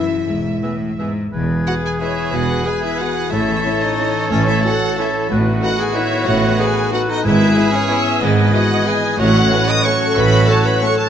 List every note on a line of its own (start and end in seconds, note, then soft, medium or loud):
0.00 0.28 F#2 medium
0.00 1.26 E3 medium
0.00 1.49 B3 medium
0.00 1.18 E4 medium
0.00 2.16 E4 medium
0.00 1.66 G#4 soft
0.00 1.17 E5 medium
0.28 0.58 E1 medium
0.28 0.64 G#2 medium
0.63 1.00 A2 medium
0.63 0.72 B3 medium
0.63 0.71 G#4 soft
0.63 0.76 B4 medium
0.63 0.76 E5 medium
0.63 0.72 E5 soft
0.63 0.70 G#5 medium
0.98 1.33 G#2 medium
0.98 1.08 B3 medium
0.98 1.08 G#4 soft
0.98 1.11 B4 soft
0.98 1.11 E5 soft
0.98 1.08 E5 soft
0.98 1.06 G#5 medium
1.32 1.62 E1 medium
1.32 1.61 E2 medium
1.32 3.28 E3 medium
1.32 2.31 E3 medium
1.32 3.28 B3 medium
1.32 3.33 G#4 medium
1.32 1.97 B4 medium
1.32 1.98 G#6 medium
1.50 2.48 B3 medium
1.67 1.75 G#3 medium
1.67 1.76 B3 medium
1.67 1.75 F#4 medium
1.67 2.00 G#4 medium
1.67 1.99 B4 medium
1.67 1.74 F#5 loud
1.84 2.01 G#4 medium
1.84 2.82 E5 medium
1.84 1.92 G#5 medium
2.00 2.09 G#3 medium
2.00 2.09 B3 medium
2.00 2.35 E4 medium
2.00 2.65 G#4 medium
2.00 2.64 B4 medium
2.00 2.33 C#5 medium
2.00 2.33 E5 medium
2.00 2.65 G#6 medium
2.17 3.17 E4 medium
2.33 2.60 E1 medium
2.33 2.61 E2 medium
2.33 3.33 E3 medium
2.33 2.67 F#4 medium
2.33 2.64 B4 medium
2.33 2.66 F#5 loud
2.49 3.34 B3 medium
2.66 2.74 G#3 medium
2.66 2.74 B3 medium
2.66 2.83 G#4 medium
2.66 2.99 G#4 medium
2.66 3.31 B4 medium
2.66 2.83 G#5 medium
2.66 3.35 G#6 medium
2.83 3.02 E4 medium
2.83 3.00 E5 loud
2.83 5.31 E5 medium
3.00 3.08 G#3 medium
3.00 3.08 B3 medium
3.00 3.34 F#4 medium
3.00 3.34 G#4 medium
3.00 3.33 F#5 loud
3.18 3.65 E4 medium
3.31 3.60 A1 medium
3.31 3.59 A2 medium
3.31 4.31 A2 medium
3.31 5.27 E3 medium
3.31 5.27 C#4 medium
3.31 3.84 E4 medium
3.31 5.30 A4 medium
3.31 4.61 C#5 medium
3.31 4.29 C#5 medium
3.31 3.82 E5 loud
3.31 4.31 A6 medium
3.50 4.47 E3 medium
3.66 3.74 C#4 medium
3.66 3.98 E4 medium
3.83 4.30 D#4 medium
3.83 4.81 C#5 medium
3.83 4.31 D#5 medium
3.99 4.08 C#4 medium
3.99 4.64 E4 medium
4.16 5.14 C#4 medium
4.30 4.58 A1 medium
4.30 4.58 A2 medium
4.30 5.29 A2 medium
4.30 4.48 C#4 medium
4.30 4.96 C#5 medium
4.30 4.47 C#5 loud
4.30 4.97 A6 medium
4.47 5.32 E3 medium
4.47 4.66 E4 medium
4.47 4.64 E5 loud
4.65 4.73 C#4 medium
4.65 4.98 E4 medium
4.65 5.01 F#4 loud
4.65 5.31 A4 medium
4.65 4.98 F#5 loud
4.82 5.32 C#5 medium
4.98 5.07 C#4 medium
4.98 5.32 E4 medium
4.98 5.31 E4 medium
4.98 5.29 C#5 medium
4.98 5.31 E5 medium
4.98 5.33 A6 medium
5.16 5.32 C#4 medium
5.30 5.57 A1 medium
5.30 5.57 A2 medium
5.30 6.27 A2 medium
5.30 7.21 D#3 medium
5.30 7.21 B3 medium
5.30 7.21 F#4 medium
5.30 5.63 F#4 medium
5.30 5.62 B4 medium
5.30 5.63 F#6 medium
5.46 6.42 A3 medium
5.61 5.70 B3 medium
5.61 5.69 D#4 medium
5.61 5.95 D#4 medium
5.61 5.80 F#4 medium
5.61 5.96 A4 medium
5.61 6.27 B4 medium
5.61 5.79 F#5 loud
5.61 6.27 F#6 medium
5.79 5.96 G#4 loud
5.79 6.75 B4 medium
5.79 5.97 G#5 loud
5.95 6.04 B3 medium
5.95 6.04 D#4 medium
5.95 6.58 D#4 medium
5.95 6.28 E4 loud
5.95 6.58 C#5 loud
5.95 6.28 E5 loud
6.13 7.09 B3 medium
6.27 6.54 A1 loud
6.27 6.54 A2 loud
6.27 7.26 A2 medium
6.27 6.58 F#4 medium
6.27 6.92 B4 medium
6.27 6.59 F#5 loud
6.27 6.92 F#6 medium
6.43 7.26 A3 medium
6.58 6.66 B3 medium
6.58 6.67 D#4 medium
6.58 6.92 D#4 medium
6.58 6.92 G#4 loud
6.58 6.94 B4 medium
6.58 6.93 G#5 loud
6.76 7.73 B4 medium
6.92 7.00 B3 medium
6.92 7.00 D#4 medium
6.92 7.26 D#4 medium
6.92 7.11 F#4 loud
6.92 7.25 A4 medium
6.92 7.25 B4 medium
6.92 7.00 F#5 loud
6.92 7.26 F#6 medium
7.09 8.06 B3 medium
7.09 7.25 D#4 loud
7.09 7.25 D#5 loud
7.23 7.51 G#1 loud
7.23 7.51 G#2 loud
7.23 8.21 G#2 medium
7.23 9.15 E3 medium
7.23 9.15 B3 medium
7.23 7.71 E4 loud
7.23 8.89 G#4 loud
7.23 7.89 B4 medium
7.23 7.95 B4 medium
7.23 7.73 E5 loud
7.23 7.95 G#6 medium
7.40 8.37 G#3 medium
7.56 7.64 B3 medium
7.56 7.64 E4 medium
7.56 7.90 E4 medium
7.72 8.23 C#4 loud
7.72 8.70 B4 medium
7.72 8.22 C#5 loud
7.89 7.97 B3 medium
7.89 7.97 E4 medium
7.89 8.53 E4 medium
7.89 8.22 E5 loud
8.07 9.02 B3 medium
8.21 8.49 G#1 loud
8.21 8.48 G#2 loud
8.21 9.21 G#2 medium
8.21 8.55 B3 medium
8.21 8.84 B4 medium
8.21 8.54 B4 loud
8.21 9.19 D#5 loud
8.21 8.84 G#6 medium
8.38 9.21 G#3 medium
8.53 8.61 B3 medium
8.53 8.61 E4 medium
8.53 8.86 E4 medium
8.53 8.88 F#4 loud
8.53 8.88 F#5 loud
8.71 9.21 B4 medium
8.86 8.95 B3 medium
8.86 8.95 E4 medium
8.86 9.20 E4 medium
8.86 9.21 G#4 medium
8.86 9.21 B4 medium
8.86 9.20 G#5 loud
8.86 9.19 G#6 medium
9.04 9.21 B3 medium
9.19 9.46 A1 loud
9.19 9.46 A2 loud
9.19 10.15 A2 medium
9.19 11.09 A3 medium
9.19 11.09 C#4 medium
9.19 11.09 F#4 loud
9.19 9.70 F#4 loud
9.19 9.51 C#5 loud
9.19 9.84 C#5 medium
9.19 9.68 F#5 loud
9.19 9.84 F#6 medium
9.35 10.32 F#3 medium
9.51 9.59 A3 medium
9.51 9.59 C#4 medium
9.51 9.84 C#4 medium
9.51 9.85 B4 medium
9.68 10.66 A4 medium
9.68 9.84 D#5 loud
9.68 9.86 D#6 loud
9.83 9.93 A3 medium
9.83 9.93 C#4 medium
9.83 10.49 C#4 medium
9.83 10.49 A4 loud
9.83 10.16 C#5 medium
9.83 10.48 C#5 medium
9.83 10.17 C#6 loud
9.83 10.48 F#6 medium
10.01 10.98 A3 medium
10.17 10.43 A1 loud
10.17 11.09 A2 loud
10.17 10.43 A2 medium
10.17 10.49 B4 loud
10.17 10.49 B5 loud
10.33 11.09 F#3 medium
10.48 10.58 A3 medium
10.48 10.57 C#4 medium
10.48 10.82 C#4 medium
10.48 10.67 A4 loud
10.48 10.82 C#5 medium
10.48 10.83 C#5 medium
10.48 10.66 A5 loud
10.48 10.83 F#6 medium
10.65 11.09 A4 medium
10.65 10.84 B4 loud
10.65 10.83 B5 loud
10.82 10.90 A3 medium
10.82 10.90 C#4 medium
10.82 11.09 C#4 medium
10.82 11.09 A4 medium
10.82 10.97 C#5 loud
10.82 11.09 C#5 medium
10.82 10.99 C#6 loud
10.82 11.09 F#6 medium
10.98 11.09 A3 medium
10.98 11.09 A4 loud
10.98 11.09 A5 loud